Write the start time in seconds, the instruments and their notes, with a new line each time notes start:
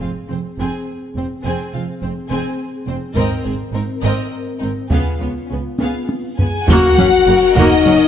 Already playing: french horn section C4 G#4
0.00 double bass section F1, cello section F2, viola section C4, violin section F4 F5
0.29 double bass section F1, cello section F2, viola section C4, violin section C4 C5
0.58 double bass section F1, cello section F2, viola section C4, violin section G#4 G#5
1.15 double bass section F1, cello section F2, violin section C4 C5, viola section C4
1.44 double bass section F1, cello section F2, viola section C4, violin section G#4 G#5
1.74 double bass section F1, cello section F2, viola section C4, violin section F4 F5
2.02 double bass section F1, cello section F2, violin section C4 C5, viola section C4
2.29 double bass section F1, cello section F2, viola section C4, violin section G#4 G#5
2.87 double bass section F1, cello section F2, violin section C4 C5, viola section C4
3.14 double bass section G#1, cello section G#2, french horn section C4 A#4, viola section C4, violin section A#4 D#5, taiko
3.44 double bass section G#1, cello section G#2, viola section C4, violin section G#4 C5
3.73 double bass section G#1, cello section G#2, viola section C4, violin section D#4 A#4
4.02 double bass section G#1, cello section G#2, viola section C4, violin section A#4 D#5
4.60 double bass section G#1, cello section G#2, viola section C4, violin section D#4 A#4
4.89 double bass section C#2, cello section C#3, french horn section B3 F4, viola section B3, violin section G#4 F5, taiko, reverse cymbal
5.20 double bass section C#2, cello section C#3, viola section B3, violin section F4 C#5
5.48 double bass section C#2, cello section C#3, viola section B3, violin section C#4 B4
5.79 double bass section C#2, cello section C#3, viola section B3, violin section G#4 F5, taiko high
6.09 taiko high
6.38 double bass section C#2, cello section C#3, viola section B3, violin section C#4 B4 G#5, french horn section G#4, taiko low
6.66 double bass section F#1, cello section F#2, viola section A#3 F#4, string section C#4 F#4 A#4 F#5, french horn section F#4, violin section F#5, taiko, sub drop
6.97 double bass section F#1, cello section F#2, viola section F#3 C#4, taiko mid
7.27 double bass section F#1, cello section F#2, viola section C#3 A#3
7.54 double bass section F#1, cello section F#2, viola section A#3 F#4, french horn section D#4, violin section D#5, taiko
7.85 double bass section F#1, cello section F#2, viola section F#3 C#4